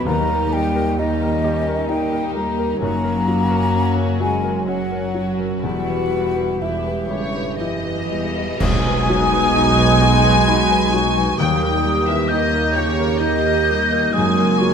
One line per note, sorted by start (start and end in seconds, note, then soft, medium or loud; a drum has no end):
0.00 0.11 B2 medium
0.00 0.11 F#3 soft
0.00 0.12 F#3 medium
0.00 1.70 B3 medium
0.00 0.10 D#4 medium
0.00 0.11 F#4 medium
0.00 0.12 F#4 medium
0.00 0.11 B4 medium
0.00 0.12 B4 medium
0.00 0.11 D#5 medium
0.00 0.97 D#5 medium
0.00 0.12 B5 medium
0.06 2.76 D#2 medium
0.06 2.77 D#2 medium
0.06 2.85 D#3 medium
0.06 0.97 G3 medium
0.06 0.97 D#4 medium
0.06 0.99 G4 medium
0.06 0.52 A#4 medium
0.06 0.54 A#5 loud
0.29 2.57 D#4 medium
0.29 0.67 A#4 medium
0.51 0.98 G3 medium
0.51 0.90 G3 medium
0.51 2.34 A#4 medium
0.51 1.01 G5 loud
0.76 2.10 G4 medium
0.76 1.12 A#4 medium
0.97 1.87 D#3 medium
0.97 1.88 G3 medium
0.97 1.43 D#4 medium
0.97 1.35 D#4 medium
0.97 1.88 G4 medium
0.97 1.88 D#5 medium
0.97 1.90 D#5 loud
1.21 1.58 A#4 medium
1.21 1.65 A#5 medium
1.43 1.89 C#4 medium
1.43 1.81 G4 medium
1.43 2.85 G5 medium
1.67 2.04 A#4 medium
1.67 4.19 A#5 medium
1.88 2.35 G3 medium
1.88 2.81 A#3 medium
1.88 2.81 D#4 medium
1.88 2.26 D#4 medium
1.88 2.81 G4 medium
1.88 2.85 D#5 medium
1.88 2.35 G5 medium
2.12 2.85 G4 soft
2.12 2.49 A#4 medium
2.35 2.72 G3 soft
2.35 3.49 A#4 medium
2.35 2.82 A#4 medium
2.35 2.80 A#5 medium
2.58 2.85 D#4 medium
2.58 2.82 A#4 medium
2.81 5.60 F#1 medium
2.81 5.67 F#2 medium
2.81 5.60 F#2 medium
2.81 4.63 F#3 medium
2.81 4.17 A#3 loud
2.81 4.63 C#4 medium
2.81 4.64 F#4 medium
2.81 3.93 A#5 loud
3.04 5.39 F#3 medium
3.04 3.41 A#4 medium
3.28 3.64 F#3 medium
3.28 5.14 C#4 medium
3.50 4.90 A#4 medium
3.50 3.87 A#4 medium
3.73 4.11 C#4 soft
3.73 4.67 F#4 medium
3.97 4.34 A#4 soft
3.97 4.43 C#5 medium
4.20 4.68 G#3 medium
4.20 4.58 F#4 medium
4.20 4.67 G#5 medium
4.20 5.68 A#5 medium
4.43 4.81 A#4 soft
4.43 5.68 C#5 soft
4.66 5.61 F#3 medium
4.66 5.47 F#3 medium
4.66 5.05 C#4 medium
4.66 5.62 C#4 medium
4.66 5.68 F#4 soft
4.66 5.62 F#4 medium
4.66 5.33 F#5 medium
4.91 5.30 A#4 soft
4.91 5.68 A#4 soft
5.14 5.54 F#3 soft
5.14 5.68 C#4 soft
5.39 5.68 F#3 soft
5.39 5.64 A#4 soft
5.62 8.38 E1 medium
5.62 6.51 E2 medium
5.62 8.56 E2 medium
5.62 8.64 E2 medium
5.62 6.59 G3 medium
5.62 6.59 E4 medium
5.62 6.59 F#4 medium
5.62 6.60 B4 medium
5.62 6.63 F#5 medium
5.89 8.64 E3 soft
5.89 6.27 B4 soft
6.13 6.51 G3 soft
6.13 8.10 E4 soft
6.36 6.75 B4 soft
6.36 7.84 B4 soft
6.60 7.06 E2 medium
6.60 7.09 E3 soft
6.60 7.08 E4 medium
6.60 7.00 E4 soft
6.60 8.35 G4 medium
6.60 7.59 G4 soft
6.60 7.09 B4 medium
6.60 7.59 E5 medium
6.86 7.25 B4 soft
6.86 8.64 G5 soft
7.07 7.59 G2 medium
7.07 7.54 C#3 medium
7.07 7.49 G4 soft
7.07 7.55 C#5 medium
7.07 10.00 B5 soft
7.35 7.74 B4 soft
7.57 8.09 F#2 medium
7.57 8.59 E3 medium
7.57 8.00 E4 soft
7.57 8.64 G4 soft
7.57 8.60 D#5 medium
7.85 9.31 B4 soft
7.85 8.25 B4 soft
8.10 8.59 E2 medium
8.10 8.50 G3 soft
8.10 8.64 E4 soft
8.37 8.64 G3 soft
8.37 8.61 B4 soft
8.59 11.34 B1 medium
8.59 9.96 B2 loud
8.59 11.34 B2 medium
8.59 11.42 B2 medium
8.59 11.33 G#3 loud
8.59 11.34 D#4 medium
8.59 11.34 F#4 medium
8.59 11.38 G#5 loud
8.59 11.35 G#5 loud
8.59 10.42 D#6 loud
8.59 concert bass drum medium
8.59 crash medium
8.85 11.16 F#3 medium
8.85 9.22 B4 medium
9.09 9.46 F#3 medium
9.09 10.92 D#4 medium
9.32 10.70 B4 medium
9.32 9.69 B4 medium
9.54 9.91 D#4 medium
9.54 10.46 F#4 medium
9.77 10.14 B4 medium
9.77 10.23 D#5 medium
10.01 10.37 F#4 medium
10.01 11.41 B5 medium
10.24 10.60 B4 medium
10.47 10.83 D#4 medium
10.47 11.41 F#4 medium
10.47 10.94 B5 medium
10.71 11.06 B4 medium
10.71 11.42 B4 medium
10.93 11.29 F#3 medium
10.93 11.61 D#4 medium
10.93 11.40 C#6 medium
11.17 11.42 F#3 medium
11.17 11.38 B4 medium
11.37 14.10 D#2 medium
11.37 14.11 D#2 medium
11.37 14.18 D#3 medium
11.37 12.05 G3 medium
11.37 14.74 A#3 medium
11.37 14.10 G4 medium
11.37 12.06 G5 medium
11.37 12.05 G5 medium
11.37 12.30 D#6 medium
11.62 13.91 D#4 soft
11.62 11.97 A#4 medium
11.84 12.20 G3 medium
11.84 13.66 A#4 medium
12.06 12.28 E3 medium
12.06 13.42 G4 medium
12.06 12.43 A#4 medium
12.06 12.29 E5 medium
12.28 12.75 D#3 medium
12.28 12.65 D#4 medium
12.28 12.73 D#5 loud
12.28 12.74 D#5 medium
12.28 13.19 D#5 medium
12.28 12.89 G6 medium
12.53 12.88 A#4 medium
12.53 12.97 A#5 medium
12.74 13.12 G4 medium
12.74 13.19 C#5 loud
12.74 13.20 C#5 medium
12.74 14.18 G5 medium
12.78 13.21 C#3 medium
12.98 13.35 A#4 medium
12.98 14.74 A#5 medium
13.19 13.57 D#4 medium
13.19 14.13 D#5 medium
13.19 14.14 D#5 medium
13.19 14.18 D#5 medium
13.19 14.14 G6 medium
13.23 14.14 D#3 medium
13.43 14.18 G4 medium
13.43 13.82 A#4 medium
13.68 14.06 G3 soft
13.68 14.74 A#4 medium
13.92 14.18 D#4 medium
13.92 14.15 A#4 medium
14.13 14.74 F#1 medium
14.13 14.74 F#2 medium
14.13 14.74 G#3 loud
14.13 14.74 F#4 medium
14.13 14.74 G#5 loud
14.13 14.60 D#6 medium
14.18 14.74 F#2 medium
14.38 14.74 F#3 soft
14.38 14.74 A#4 medium
14.58 14.74 F#3 medium
14.58 14.74 C#4 medium
14.58 14.74 C#6 medium